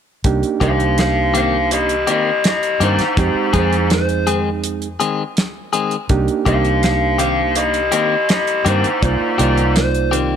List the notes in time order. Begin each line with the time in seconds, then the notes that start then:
0.24 C2 A#3 D4 D#4 G4, kick, closed hi-hat
0.43 closed hi-hat
0.60 C2 D#3 A#3 C4 D4 D#4 G4 C5 F5, kick, closed hi-hat
0.80 closed hi-hat
0.98 C5 F5, snare, closed hi-hat
1.34 D#3 A#3 C4 G4 C5, closed hi-hat
1.38 F5
1.71 G4 D#5, closed hi-hat
1.89 closed hi-hat
2.07 D#3 A#3 C4 G4 D#5, closed hi-hat
2.44 G4, snare, closed hi-hat
2.48 D#5
2.63 closed hi-hat
2.80 G2 D#3 A#3 C4 D#4 G4 C5, closed hi-hat
2.98 muted fingered electric bass stroke, snare, closed hi-hat
3.17 F2 G#3 C4 D#4 G4 C5, kick, closed hi-hat
3.34 muted fingered electric bass stroke
3.53 F2 D#3 G#3 C4 D#4 G#4 C5, kick, closed hi-hat
3.73 closed hi-hat
3.90 C5, snare, closed hi-hat
4.09 closed hi-hat
4.27 D#3 G#3 C4 G#4, closed hi-hat
4.64 closed hi-hat
4.82 closed hi-hat
5.00 D#3 G#3 C4 G#4, closed hi-hat
5.37 snare, closed hi-hat
5.73 D#3 G#3 C4 G#4, closed hi-hat
5.91 closed hi-hat
6.09 C2 A#3 D4 D#4 G4, kick, closed hi-hat
6.28 closed hi-hat
6.45 C2 D#3 A#3 C4 D4 D#4 G4 C5 F5, kick, closed hi-hat
6.65 closed hi-hat
6.83 C5 F5, snare, closed hi-hat
7.18 D#3 A#3 C4 G4 C5 F5, closed hi-hat
7.55 G4 D#5, closed hi-hat
7.74 closed hi-hat
7.92 D#3 A#3 C4 G4 D#5, closed hi-hat
8.29 G4 D#5, snare, closed hi-hat
8.47 closed hi-hat
8.65 G2 D#3 A#3 C4 D#4 G4 C5, closed hi-hat
8.84 muted fingered electric bass stroke, closed hi-hat
9.03 C2 A#3 D#4 F4 C5 D5, kick, closed hi-hat
9.38 C2 D#3 A#3 C4 D#4 F4 G4 C5 D5, closed hi-hat
9.57 closed hi-hat
9.76 C5, snare, closed hi-hat
9.95 closed hi-hat
10.11 D#3 A#3 C4 G4, closed hi-hat